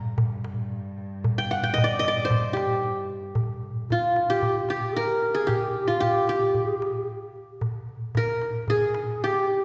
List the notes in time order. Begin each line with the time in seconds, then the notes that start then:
Already playing: G2 A#5
0.18 darbuka dum
0.44 darbuka tek
0.72 darbuka ka
0.98 darbuka ka
1.24 darbuka dum
1.38 G5
1.51 F#5
1.63 G5
1.74 D#5
1.78 darbuka dum
1.84 D5
1.99 D#5
2.04 D5, darbuka tek
2.25 C5
2.30 darbuka dum
2.53 G4, darbuka tek
2.71 darbuka ka
2.85 darbuka ka
3.10 darbuka ka
3.23 darbuka ka
3.35 darbuka dum
3.63 darbuka ka
3.89 F4, darbuka dum
4.16 darbuka tek
4.30 G4
4.42 darbuka dum
4.69 G4, darbuka tek
4.96 A#4, darbuka ka
5.35 G#4
5.47 G4, darbuka dum
5.87 F4
6.00 G4, darbuka dum
6.28 G4, darbuka tek
6.55 darbuka dum
6.82 darbuka tek
7.10 darbuka ka
7.36 darbuka ka
7.61 darbuka dum
7.89 darbuka ka
8.15 A#4, darbuka dum
8.41 darbuka tek
8.68 G#4, darbuka dum
8.94 darbuka tek
9.21 G4, darbuka ka
9.43 G#4, darbuka ka
9.49 G4
9.61 darbuka ka